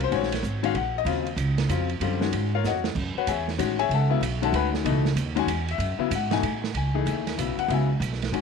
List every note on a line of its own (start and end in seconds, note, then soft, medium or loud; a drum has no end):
0.00 0.11 C2 medium
0.00 0.28 F#3 medium
0.00 0.28 C4 medium
0.00 0.10 C#4 medium
0.00 0.28 F4 medium
0.00 0.13 C5 loud
0.00 ride soft
0.11 0.42 A#1 medium
0.11 0.30 D#3 medium
0.11 0.30 G#3 medium
0.11 0.30 C#4 medium
0.11 0.30 F#4 medium
0.11 0.62 C#5 medium
0.11 ride medium
0.23 snare soft
0.32 snare soft
0.32 ride medium
0.43 0.74 G#1 medium
0.43 hi-hat pedal medium
0.63 0.74 D#3 medium
0.63 0.74 G#3 medium
0.63 0.74 C#4 medium
0.63 0.74 F#4 loud
0.63 0.75 F5 medium
0.63 ride medium
0.74 1.04 A#1 medium
0.74 0.96 F#5 medium
0.74 ride medium
0.98 1.67 D#5 loud
1.05 1.36 D#2 medium
1.05 1.24 C#3 medium
1.05 1.25 F#3 medium
1.05 1.25 C4 medium
1.05 1.25 F4 medium
1.05 ride medium
1.26 ride soft
1.36 1.68 C#2 medium
1.36 hi-hat pedal medium
1.36 ride medium
1.58 snare medium
1.58 ride medium
1.69 2.00 F2 medium
1.69 1.88 C#3 medium
1.69 1.88 F#3 medium
1.69 1.88 C4 medium
1.69 1.88 F4 medium
1.69 hi-hat pedal medium
1.69 ride medium
1.89 ride soft
2.00 2.31 F#2 medium
2.00 2.19 D3 medium
2.00 2.19 G3 medium
2.00 2.20 C4 medium
2.00 2.20 F4 medium
2.00 ride medium
2.21 2.49 D#3 medium
2.21 2.49 G#3 medium
2.21 2.49 C#4 medium
2.21 2.49 F#4 medium
2.21 snare soft
2.32 2.63 G#2 medium
2.32 ride medium
2.55 2.65 F4 medium
2.55 2.65 A#4 medium
2.55 2.65 C#5 medium
2.55 2.65 F5 medium
2.64 2.94 F2 medium
2.64 2.86 F#4 medium
2.64 2.85 C#5 medium
2.64 2.86 D#5 medium
2.64 2.85 F#5 medium
2.64 snare medium
2.64 hi-hat pedal medium
2.84 snare medium
2.95 3.14 F#2 medium
2.95 kick medium
2.95 crash medium
3.16 3.29 F#4 medium
3.16 3.28 B4 medium
3.16 3.28 C#5 medium
3.16 3.28 F#5 medium
3.16 muted upright bass stroke soft
3.27 3.58 E2 medium
3.27 3.48 G#4 medium
3.27 3.48 C#5 medium
3.27 3.48 E5 medium
3.27 3.48 G#5 medium
3.27 hi-hat pedal medium
3.27 ride medium
3.48 snare soft
3.58 3.88 A1 medium
3.58 3.77 D#3 medium
3.58 3.77 G#3 medium
3.58 3.77 C#4 medium
3.58 3.77 F#4 medium
3.58 hi-hat pedal medium
3.58 ride medium
3.79 3.91 G#4 medium
3.79 3.90 C#5 medium
3.79 3.91 E5 medium
3.79 3.90 G#5 loud
3.79 ride soft
3.89 4.20 C#2 medium
3.89 ride medium
3.93 4.12 A4 medium
3.93 4.12 E5 medium
3.93 4.12 F#5 medium
3.93 4.12 A5 medium
4.10 4.21 C#3 medium
4.10 4.21 F#3 medium
4.10 4.21 B3 medium
4.10 4.21 E4 medium
4.21 4.52 B1 loud
4.21 hi-hat pedal medium
4.21 ride medium
4.42 4.83 D#3 medium
4.42 4.83 G#3 medium
4.42 4.83 C#4 medium
4.42 4.83 F#4 medium
4.42 4.54 A4 medium
4.42 4.54 E5 medium
4.42 4.54 F#5 medium
4.42 4.54 A5 medium
4.42 ride medium
4.52 4.84 D2 medium
4.52 4.67 B4 medium
4.52 4.68 F#5 medium
4.52 4.68 G#5 medium
4.52 4.67 B5 medium
4.52 ride medium
4.74 snare medium
4.84 5.15 C#2 medium
4.84 5.03 B2 medium
4.84 5.03 E3 medium
4.84 5.03 A3 medium
4.84 5.04 D#4 medium
4.84 ride medium
5.05 snare medium
5.16 5.46 D#2 medium
5.16 hi-hat pedal medium
5.16 ride medium
5.35 5.47 D#3 medium
5.35 5.47 G#3 medium
5.35 5.47 C#4 medium
5.35 5.47 F#4 loud
5.35 5.68 G#5 loud
5.35 ride medium
5.47 5.78 E2 medium
5.47 hi-hat pedal medium
5.47 ride medium
5.68 6.10 E5 loud
5.68 ride soft
5.78 5.98 F#2 loud
5.78 ride medium
5.99 6.10 C#3 medium
5.99 6.10 F#3 medium
5.99 6.10 B3 medium
5.99 6.10 E4 medium
5.99 muted upright bass stroke soft
6.11 6.42 G#2 loud
6.11 hi-hat pedal medium
6.11 ride medium
6.15 6.33 F#5 medium
6.31 6.42 B2 medium
6.31 6.42 E3 medium
6.31 6.42 A3 medium
6.31 6.42 D#4 medium
6.31 6.62 G#5 loud
6.31 snare medium
6.31 ride medium
6.43 6.74 A2 medium
6.43 ride medium
6.64 snare medium
6.74 7.05 C#2 medium
6.74 7.06 G#5 medium
6.74 ride medium
6.94 7.35 E3 medium
6.94 7.36 A3 medium
6.94 7.36 D#4 medium
6.94 7.36 G#4 medium
7.05 7.37 D#2 medium
7.05 7.56 E5 medium
7.05 hi-hat pedal medium
7.05 ride medium
7.27 snare soft
7.27 ride medium
7.37 7.56 B1 medium
7.37 7.68 C#3 medium
7.37 7.68 F#3 medium
7.37 7.68 B3 medium
7.37 7.69 E4 medium
7.37 hi-hat pedal medium
7.37 ride medium
7.57 7.70 F#5 loud
7.57 muted upright bass stroke soft
7.57 ride soft
7.68 7.99 C#2 medium
7.68 7.88 C#3 medium
7.68 7.88 F#3 medium
7.68 7.88 B3 medium
7.68 7.88 E4 medium
7.68 ride medium
7.74 8.01 G#5 medium
8.00 8.31 B1 loud
8.00 hi-hat pedal medium
8.00 ride medium
8.13 snare soft
8.22 snare medium
8.22 ride medium
8.32 8.41 D#2 medium
8.32 8.41 D#3 medium
8.32 8.41 G#3 medium
8.32 8.41 C#4 medium
8.32 8.41 F#4 medium
8.32 ride medium